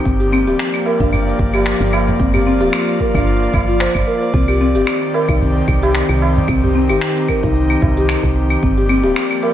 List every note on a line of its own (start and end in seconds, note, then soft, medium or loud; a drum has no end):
0.00 2.16 G4 medium
0.05 0.47 G1 medium
0.05 4.30 F3 medium
0.05 4.30 A#3 medium
0.05 0.19 C4 medium
0.05 6.44 D5 medium
0.05 kick loud
0.05 cabasa medium
0.20 0.32 G4 medium
0.20 cabasa soft
0.33 0.46 C4 medium
0.33 claves medium
0.46 0.55 D1 medium
0.46 0.59 G4 medium
0.46 tabla tin medium
0.46 cabasa medium
0.59 finger snap medium
0.59 cabasa medium
0.74 cabasa soft
0.74 claves medium
0.86 0.99 A#4 medium
0.86 tabla na medium
1.00 1.34 G1 medium
1.00 1.53 D4 medium
1.00 kick loud
1.00 tabla na soft
1.00 tabla tin medium
1.00 cabasa medium
1.13 tabla ge medium
1.13 cabasa medium
1.13 claves medium
1.27 cabasa soft
1.39 1.74 G1 medium
1.39 kick loud
1.54 1.66 G4 medium
1.54 tabla na medium
1.54 cabasa medium
1.54 claves medium
1.66 finger snap medium
1.66 cabasa medium
1.80 2.14 G1 medium
1.80 cabasa soft
1.93 tabla na medium
1.93 claves medium
2.08 tabla ge loud
2.08 cabasa medium
2.20 2.62 G1 medium
2.20 2.33 C4 medium
2.20 4.32 F4 medium
2.20 kick loud
2.20 cabasa soft
2.34 2.46 G4 medium
2.34 tabla tin soft
2.34 tabla ge medium
2.34 cabasa soft
2.34 claves medium
2.47 2.60 C4 medium
2.61 2.70 D1 loud
2.61 2.73 G4 medium
2.61 tabla tin soft
2.61 cabasa medium
2.73 finger snap medium
2.73 cabasa medium
2.73 claves medium
2.88 cabasa soft
3.00 3.13 A#4 medium
3.00 kick medium
3.14 3.48 G1 loud
3.14 3.67 D4 medium
3.14 kick medium
3.14 tabla tin medium
3.14 cabasa medium
3.14 claves medium
3.27 cabasa medium
3.42 cabasa soft
3.53 3.88 G1 medium
3.53 kick loud
3.53 tabla na medium
3.53 tabla ge medium
3.53 claves medium
3.68 3.80 F4 medium
3.68 cabasa medium
3.80 3.94 C5 medium
3.80 finger snap medium
3.80 cabasa medium
3.95 4.04 G1 medium
3.95 kick medium
3.95 tabla na soft
3.95 cabasa soft
3.95 claves medium
4.07 4.20 A#4 medium
4.22 cabasa medium
4.34 4.77 C2 medium
4.34 8.59 D#3 medium
4.34 4.47 C4 medium
4.34 8.59 C4 medium
4.34 9.54 G4 medium
4.34 kick loud
4.34 cabasa medium
4.48 4.60 G4 medium
4.48 cabasa soft
4.48 claves medium
4.61 4.74 C4 medium
4.75 4.84 G1 loud
4.75 4.87 G4 medium
4.75 tabla tin soft
4.75 cabasa medium
4.87 finger snap medium
4.87 cabasa soft
4.87 claves medium
5.02 cabasa soft
5.14 5.28 A#4 medium
5.14 tabla na medium
5.28 5.62 C2 medium
5.28 5.81 D#4 medium
5.28 kick loud
5.28 tabla na soft
5.28 tabla tin medium
5.28 cabasa medium
5.28 claves medium
5.41 tabla ge medium
5.41 cabasa medium
5.56 cabasa soft
5.68 6.03 C2 medium
5.68 kick medium
5.68 claves medium
5.83 5.94 G4 medium
5.83 tabla na medium
5.83 cabasa medium
5.95 finger snap medium
5.95 cabasa soft
6.09 6.43 C2 medium
6.09 cabasa soft
6.09 claves medium
6.22 tabla na medium
6.36 tabla ge medium
6.36 cabasa medium
6.48 6.91 C2 medium
6.48 6.61 C4 medium
6.48 8.61 D#4 medium
6.48 kick loud
6.48 cabasa soft
6.48 claves medium
6.63 6.75 G4 medium
6.63 tabla ge medium
6.63 cabasa soft
6.75 6.88 C4 medium
6.89 6.98 G1 loud
6.89 7.01 G4 medium
6.89 tabla tin medium
6.89 cabasa medium
6.89 claves medium
7.01 finger snap medium
7.01 cabasa medium
7.16 cabasa soft
7.28 7.42 A#4 medium
7.28 kick medium
7.28 claves medium
7.43 7.77 C2 medium
7.43 7.96 D#4 medium
7.43 kick medium
7.43 tabla tin medium
7.43 cabasa medium
7.56 cabasa soft
7.70 cabasa soft
7.70 claves medium
7.82 8.17 C2 medium
7.82 kick medium
7.82 tabla na medium
7.82 tabla ge medium
7.97 8.09 G4 medium
7.97 cabasa medium
8.09 finger snap medium
8.09 cabasa soft
8.09 claves medium
8.23 8.57 C2 medium
8.23 kick medium
8.23 cabasa soft
8.50 cabasa medium
8.50 claves medium
8.63 9.05 G1 loud
8.63 9.54 F3 medium
8.63 9.54 A#3 medium
8.63 8.76 C4 medium
8.63 9.54 D5 medium
8.63 kick loud
8.63 cabasa soft
8.77 8.89 G4 medium
8.77 cabasa soft
8.89 9.03 C4 medium
8.89 claves medium
9.04 9.13 D1 loud
9.04 9.16 G4 loud
9.04 tabla tin medium
9.04 cabasa medium
9.16 finger snap medium
9.16 cabasa soft
9.31 cabasa soft
9.31 claves medium
9.43 9.54 A#4 medium
9.43 tabla na medium